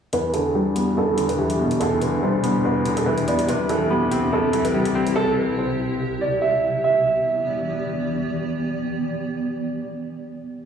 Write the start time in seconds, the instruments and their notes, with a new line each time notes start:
0.13 ambient pad E2 B2 D4 G4, felt piano E2, grand piano B4, closed hi-hat
0.34 felt piano D3, grand piano A4, closed hi-hat
0.55 felt piano G3, grand piano G4
0.75 felt piano B3, closed hi-hat
0.97 felt piano E2, grand piano A4
1.18 felt piano D3, closed hi-hat
1.29 grand piano B4, closed hi-hat
1.38 felt piano E3, grand piano G4
1.50 closed hi-hat
1.59 felt piano B2
1.71 closed hi-hat
1.80 felt piano E2, grand piano A4, closed hi-hat
2.02 felt piano D3, grand piano B4, closed hi-hat
2.23 felt piano G3, grand piano C5
2.43 felt piano B3, closed hi-hat
2.65 felt piano E2, grand piano B4
2.86 felt piano D3, closed hi-hat
2.97 grand piano A4, closed hi-hat
3.06 felt piano E3, grand piano B4
3.18 closed hi-hat
3.27 felt piano B3, grand piano D5, closed hi-hat
3.39 closed hi-hat
3.48 ambient pad C2 C3 E4 G4, felt piano C3, grand piano B4, closed hi-hat
3.69 felt piano E3, grand piano A4, closed hi-hat
3.90 felt piano B3, grand piano G4
4.11 felt piano C4, closed hi-hat
4.32 felt piano C3, grand piano A4
4.53 felt piano E3, closed hi-hat
4.64 grand piano B4, closed hi-hat
4.74 felt piano G3, grand piano G4
4.85 closed hi-hat
4.95 felt piano C4
5.07 closed hi-hat
5.16 grand piano A4
5.37 grand piano B4
5.58 grand piano C5
6.21 grand piano D5
6.42 grand piano E5
6.84 ambient pad E3 B3 G4 D5, grand piano E5